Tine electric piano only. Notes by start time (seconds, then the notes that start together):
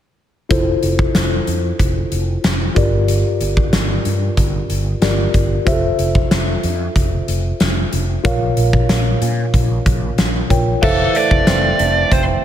0.49 E4 F4 A4 C5
2.75 G2 F4 G4 A#4 D5
5.01 F4 G4 A#4 D5
5.65 F4 G4 C5 E5
5.73 A4
8.24 A#2 F4 A#4 C#5 F5
10.50 F4 A#4 C#5 G5
10.82 A4 C5 E5 F5